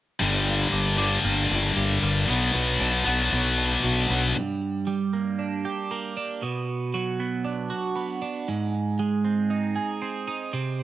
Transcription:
0.20 0.65 G1 medium
0.20 0.96 G2 medium
0.20 1.50 G2 medium
0.20 0.97 D3 medium
0.20 0.96 G3 medium
0.46 1.23 A#3 medium
0.72 1.16 G1 medium
0.72 1.49 D4 medium
0.97 2.28 G2 medium
0.97 2.27 D3 medium
0.97 2.26 G3 medium
0.97 2.28 G4 medium
1.24 1.46 G1 medium
1.24 2.01 A#3 medium
1.50 1.73 G1 medium
1.50 2.79 D4 medium
1.76 1.98 G1 medium
1.76 2.28 G3 medium
2.02 2.24 G1 medium
2.02 2.28 A#3 medium
2.27 2.51 B1 medium
2.27 3.04 B2 medium
2.27 3.58 B2 medium
2.27 3.05 F#3 medium
2.27 3.04 B3 medium
2.54 2.76 B1 medium
2.54 3.31 B3 medium
2.80 3.02 B1 medium
2.80 3.57 D4 medium
3.05 3.28 B1 medium
3.05 4.35 B2 medium
3.05 4.34 F#3 medium
3.05 4.34 B3 medium
3.05 4.36 F#4 medium
3.32 3.76 B1 medium
3.32 4.08 B3 medium
3.58 4.36 D4 medium
3.83 4.06 B1 medium
3.83 4.35 F#3 medium
4.09 4.32 B1 medium
4.09 4.35 B3 soft
4.35 5.65 G2 medium
4.87 6.16 G3 medium
5.13 5.90 A#3 medium
5.39 6.16 D4 medium
5.65 6.42 G4 medium
5.91 6.42 A#3 medium
6.17 6.42 D4 medium
6.43 7.71 B2 medium
6.94 8.23 F#3 medium
7.20 7.94 B3 medium
7.45 8.21 D4 medium
7.70 8.48 F#4 medium
7.96 8.48 B3 medium
8.22 8.48 D4 medium
8.48 9.77 G#2 medium
8.99 10.28 G#3 medium
9.24 10.01 C4 medium
9.50 10.26 D#4 medium
9.76 10.53 G#4 medium
10.02 10.53 C4 medium
10.28 10.53 D#4 medium
10.53 10.83 C3 medium

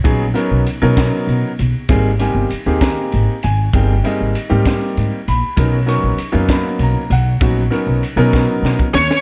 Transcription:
0.04 0.32 A#1 medium
0.04 0.24 F#3 medium
0.04 0.24 B3 medium
0.04 0.24 C#4 medium
0.04 0.24 D#4 medium
0.04 0.25 G#4 loud
0.04 kick loud
0.04 ride medium
0.34 0.64 F#3 medium
0.34 0.64 B3 medium
0.34 0.64 C#4 medium
0.34 0.65 D#4 medium
0.34 0.65 A#4 medium
0.34 ride medium
0.51 0.64 B1 medium
0.67 ride medium
0.82 1.09 B2 medium
0.82 1.50 F#3 loud
0.82 1.50 B3 medium
0.82 1.50 C#4 medium
0.82 1.50 D#4 loud
0.82 1.50 A#4 loud
0.97 kick medium
0.97 snare loud
0.97 ride medium
1.27 1.41 B2 medium
1.27 ride medium
1.59 1.72 B1 medium
1.59 ride medium
1.89 2.29 G#1 medium
1.89 2.09 G3 medium
1.89 2.09 A#3 medium
1.89 2.09 C4 medium
1.89 2.09 D#4 medium
1.89 2.09 G#4 loud
1.89 kick loud
1.89 ride medium
2.19 2.49 G3 medium
2.19 2.49 A#3 medium
2.19 2.49 C4 medium
2.19 2.49 D#4 medium
2.19 2.49 G4 medium
2.19 2.78 G#5 loud
2.19 ride medium
2.35 2.48 G1 medium
2.50 muted upright bass stroke soft
2.50 ride medium
2.66 2.93 D#2 medium
2.66 3.34 A#3 medium
2.66 3.34 C4 medium
2.66 3.34 D#4 medium
2.66 3.34 G4 medium
2.66 3.34 G#4 medium
2.81 3.38 A#5 medium
2.81 kick medium
2.81 snare loud
2.81 ride medium
3.12 3.26 G#1 medium
3.12 ride medium
3.43 3.70 G#1 medium
3.43 3.73 G#5 loud
3.43 ride medium
3.73 4.00 G1 medium
3.73 3.93 G3 medium
3.73 3.93 A#3 medium
3.73 3.93 C4 medium
3.73 3.93 D#4 medium
3.73 3.93 G#4 medium
3.73 4.04 G5 medium
3.73 kick loud
3.73 ride medium
4.04 4.33 G3 medium
4.04 4.33 A#3 medium
4.04 4.33 C4 medium
4.04 4.33 D#4 medium
4.04 4.34 G#4 medium
4.04 4.93 D#5 medium
4.04 ride medium
4.21 4.33 G#1 medium
4.35 ride medium
4.50 4.77 G#2 medium
4.50 5.18 G3 medium
4.50 5.18 A#3 medium
4.50 5.18 C4 medium
4.50 5.18 D#4 medium
4.50 5.18 G4 loud
4.65 kick medium
4.65 snare loud
4.65 ride medium
4.97 5.10 G#2 medium
4.97 ride medium
5.28 5.41 A#1 medium
5.28 5.85 B5 loud
5.28 ride medium
5.56 5.97 B1 loud
5.56 5.76 F#3 medium
5.56 5.76 B3 medium
5.56 5.76 C#4 medium
5.56 5.77 D#4 medium
5.56 5.77 A#4 medium
5.56 kick loud
5.56 ride loud
5.86 6.16 F#3 medium
5.86 6.16 B3 medium
5.86 6.16 C#4 medium
5.86 6.17 D#4 medium
5.86 6.17 A#4 medium
5.86 6.46 C#6 loud
5.86 ride medium
6.03 6.17 A#1 medium
6.18 muted upright bass stroke soft
6.18 ride medium
6.32 6.61 F#2 medium
6.32 7.01 F#3 medium
6.32 7.01 A#3 loud
6.32 7.01 B3 medium
6.32 7.01 C#4 medium
6.32 7.01 D#4 medium
6.49 6.80 B5 medium
6.49 kick medium
6.49 snare loud
6.49 ride medium
6.79 6.93 B1 loud
6.79 7.11 A#5 medium
6.79 ride medium
7.10 7.37 B1 loud
7.10 8.00 F#5 loud
7.10 ride medium
7.40 7.68 A#1 medium
7.40 7.60 F#3 medium
7.40 7.61 B3 medium
7.40 7.61 C#4 medium
7.40 7.61 D#4 medium
7.40 7.61 F#4 medium
7.40 kick loud
7.40 ride medium
7.70 8.00 F#3 medium
7.70 8.01 B3 medium
7.70 8.01 C#4 medium
7.70 8.01 D#4 medium
7.70 8.01 A#4 medium
7.70 ride medium
7.87 8.00 B1 medium
8.03 ride medium
8.16 8.44 B2 medium
8.16 8.86 F#3 loud
8.16 8.86 B3 loud
8.16 8.86 C#4 loud
8.16 8.86 D#4 loud
8.16 8.86 A#4 loud
8.33 kick medium
8.33 snare medium
8.62 8.77 B2 medium
8.62 snare medium
8.79 kick medium
8.94 9.08 D#2 medium
8.94 9.21 C#5 loud
8.94 snare loud
9.11 snare medium

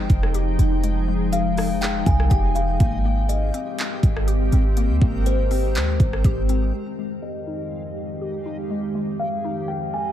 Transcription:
0.00 2.76 F3 medium
0.00 0.59 G#3 medium
0.00 2.76 G#3 medium
0.00 0.58 D#4 medium
0.00 2.76 D#4 medium
0.00 2.76 G#4 medium
0.00 0.79 D#5 medium
0.00 2.76 G5 medium
0.00 6.70 G5 medium
0.10 0.57 F1 loud
0.10 kick medium
0.10 closed hi-hat medium
0.23 cross-stick medium
0.34 1.82 G4 medium
0.34 closed hi-hat medium
0.59 2.02 F1 loud
0.59 1.56 D#4 medium
0.59 closed hi-hat medium
0.83 1.07 G#3 medium
0.83 closed hi-hat medium
1.08 2.56 G#3 medium
1.33 1.79 F5 medium
1.33 closed hi-hat medium
1.57 2.55 D#4 medium
1.57 cross-stick medium
1.57 open hi-hat medium
1.81 2.05 G5 medium
1.81 clap loud
1.81 closed hi-hat medium
2.06 2.30 C2 loud
2.06 2.30 G#5 medium
2.06 kick loud
2.06 closed hi-hat medium
2.20 cross-stick medium
2.30 2.78 F1 loud
2.30 2.80 G4 medium
2.30 2.54 G5 medium
2.30 kick medium
2.30 closed hi-hat medium
2.55 2.80 D#4 medium
2.55 2.79 F5 medium
2.55 closed hi-hat medium
2.80 3.51 G#1 loud
2.80 6.70 G#3 medium
2.80 3.04 A#3 medium
2.80 6.70 C4 medium
2.80 6.70 G4 medium
2.80 6.70 A#4 medium
2.80 kick loud
2.80 closed hi-hat medium
3.05 4.53 A#3 medium
3.29 4.73 D#5 medium
3.29 closed hi-hat medium
3.54 4.52 C4 loud
3.54 closed hi-hat medium
3.79 clap loud
3.79 closed hi-hat medium
4.03 4.50 G#1 loud
4.03 kick medium
4.03 closed hi-hat medium
4.17 cross-stick medium
4.27 5.75 G4 medium
4.27 closed hi-hat medium
4.52 4.91 G#1 loud
4.52 5.50 C4 medium
4.52 closed hi-hat medium
4.77 5.00 A#3 medium
4.77 closed hi-hat medium
4.89 5.01 D#2 loud
5.01 5.77 G#1 loud
5.01 6.49 A#3 medium
5.01 kick loud
5.26 6.21 C5 medium
5.26 closed hi-hat medium
5.51 6.48 C4 loud
5.51 open hi-hat medium
5.75 5.99 D#2 loud
5.75 clap loud
5.75 closed hi-hat medium
6.00 6.24 G#1 loud
6.00 kick loud
6.00 closed hi-hat medium
6.13 cross-stick medium
6.24 6.72 G#1 loud
6.24 6.74 G4 loud
6.24 kick loud
6.24 closed hi-hat medium
6.49 6.74 C4 medium
6.49 closed hi-hat medium
6.74 10.12 F2 medium
6.74 10.12 D#3 medium
6.74 10.12 G#3 medium
6.74 6.97 G#3 medium
6.74 10.12 G#3 medium
6.74 10.12 G4 medium
6.74 10.12 D#5 medium
6.74 10.12 F5 medium
6.99 8.46 G#3 medium
7.22 8.66 D#5 medium
7.47 8.44 D#4 medium
8.21 9.69 G4 medium
8.46 9.43 D#4 medium
8.70 8.94 G#3 medium
8.95 10.12 G#3 medium
9.19 9.66 F5 medium
9.44 10.12 D#4 medium
9.68 9.92 G5 medium
9.94 10.12 G#5 medium

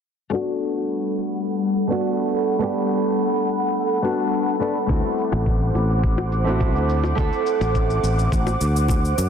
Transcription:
0.30 4.85 G3 medium
0.30 1.85 A3 medium
0.30 1.86 B3 medium
0.30 1.87 D4 medium
0.30 4.85 A4 medium
0.30 4.86 F#5 medium
0.30 4.85 B5 medium
0.30 shaker soft
0.34 1.88 F#4 medium
0.48 shaker soft
0.61 shaker medium
0.76 shaker soft
0.90 shaker soft
1.05 shaker soft
1.18 shaker medium
1.34 shaker soft
1.47 shaker soft
1.62 shaker soft
1.75 shaker medium
1.87 2.56 A3 medium
1.87 2.57 B3 medium
1.87 2.58 D4 medium
1.87 shaker soft
1.92 2.59 F#4 medium
2.04 shaker soft
2.19 shaker soft
2.33 shaker medium
2.48 shaker soft
2.59 4.00 A3 medium
2.59 4.00 B3 medium
2.59 4.01 D4 medium
2.59 shaker soft
2.63 4.02 G4 loud
2.77 shaker soft
2.90 shaker medium
3.05 shaker soft
3.19 shaker soft
3.34 shaker soft
3.47 shaker medium
3.62 shaker soft
3.76 shaker soft
3.91 shaker soft
4.02 4.57 A3 medium
4.02 4.57 B3 medium
4.02 4.58 D4 medium
4.02 4.58 F#4 medium
4.02 shaker medium
4.20 shaker soft
4.33 shaker soft
4.48 shaker soft
4.60 4.76 A3 medium
4.60 4.76 B3 medium
4.60 4.77 D4 medium
4.60 4.77 A4 medium
4.60 shaker medium
4.76 shaker soft
4.86 5.01 D2 medium
4.86 6.42 A3 medium
4.86 6.43 C4 medium
4.86 6.44 E4 medium
4.86 9.29 C5 medium
4.86 9.29 F#5 medium
4.86 9.29 D6 medium
4.86 kick loud
4.86 shaker soft
4.91 6.44 F#4 medium
5.05 shaker soft
5.18 shaker medium
5.32 5.70 A1 medium
5.32 high bongo medium
5.32 shaker soft
5.46 kick loud
5.46 shaker soft
5.62 shaker soft
5.75 6.75 A1 medium
5.75 high bongo medium
5.75 shaker medium
5.90 shaker soft
6.04 kick loud
6.04 shaker soft
6.18 high bongo medium
6.18 shaker soft
6.32 shaker medium
6.44 7.13 A3 medium
6.44 7.14 C4 medium
6.44 7.15 E4 medium
6.44 shaker soft
6.49 7.16 F#4 medium
6.60 kick medium
6.60 high bongo medium
6.60 shaker soft
6.75 7.12 D2 medium
6.75 shaker soft
6.89 shaker medium
7.04 high bongo medium
7.04 shaker soft
7.15 7.29 D2 medium
7.15 8.56 A3 medium
7.15 8.57 C4 medium
7.15 8.58 E4 medium
7.15 kick loud
7.15 shaker soft
7.20 8.59 A4 loud
7.33 shaker soft
7.46 shaker medium
7.61 7.98 A1 medium
7.61 high bongo medium
7.61 shaker soft
7.75 kick loud
7.75 shaker soft
7.90 shaker soft
8.03 8.31 A1 medium
8.03 shaker medium
8.19 shaker soft
8.32 8.54 A1 medium
8.32 kick medium
8.32 shaker soft
8.47 high bongo medium
8.47 shaker soft
8.61 9.13 D2 medium
8.61 shaker medium
8.76 shaker soft
8.88 kick medium
8.88 high bongo medium
8.88 shaker soft
9.05 shaker soft
9.18 9.29 F#2 medium
9.18 shaker medium

